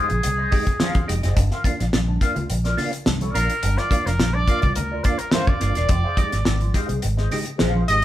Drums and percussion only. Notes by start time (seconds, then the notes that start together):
0.10 closed hi-hat, low conga
0.23 closed hi-hat, low conga
0.51 kick, snare, open hi-hat
0.67 kick, closed hi-hat
0.80 snare, high conga
0.95 kick, closed hi-hat, high conga
1.08 snare, closed hi-hat
1.23 snare, closed hi-hat
1.37 kick, closed hi-hat, muted conga
1.51 snare, closed hi-hat
1.64 kick, closed hi-hat, muted conga
1.80 snare, closed hi-hat
1.93 snare, high conga
2.21 kick, snare, closed hi-hat, muted conga
2.36 closed hi-hat, low conga
2.50 closed hi-hat
2.65 snare, closed hi-hat
2.78 snare, open hi-hat, low conga
2.93 closed hi-hat
3.06 snare, high conga
3.21 closed hi-hat, high conga
3.35 closed hi-hat
3.50 closed hi-hat
3.63 closed hi-hat, muted conga
3.77 snare, closed hi-hat
3.91 kick, closed hi-hat, muted conga
4.06 snare, closed hi-hat
4.19 snare, high conga
4.48 kick, closed hi-hat
4.62 kick, closed hi-hat, low conga
4.76 closed hi-hat, low conga
5.04 kick, snare, closed hi-hat
5.19 closed hi-hat
5.31 snare, high conga
5.47 kick, high conga
5.60 snare, closed hi-hat
5.75 snare, closed hi-hat
5.89 kick, closed hi-hat, muted conga
6.17 kick, closed hi-hat, muted conga
6.32 snare, closed hi-hat
6.45 snare, high conga
6.61 closed hi-hat
6.74 kick, snare, closed hi-hat
6.89 closed hi-hat, low conga
7.02 closed hi-hat
7.18 snare
7.31 snare, open hi-hat, low conga
7.46 closed hi-hat
7.59 snare, high conga
7.75 high conga
7.88 closed hi-hat